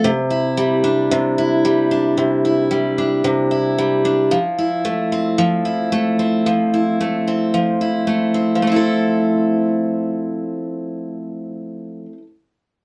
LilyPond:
\new Staff \with { instrumentName = "Steel-string acoustic guitar" } { \time 4/4 \key f \major \tempo 4 = 112 c8 e'8 g8 d'8 c8 e'8 g8 d'8 | c8 e'8 g8 d'8 c8 e'8 g8 d'8 | f8 e'8 a8 c'8 f8 e'8 a8 c'8 | f8 e'8 a8 c'8 f8 e'8 a8 c'8 |
<f a c' e' a'>1~ | <f a c' e' a'>1 | }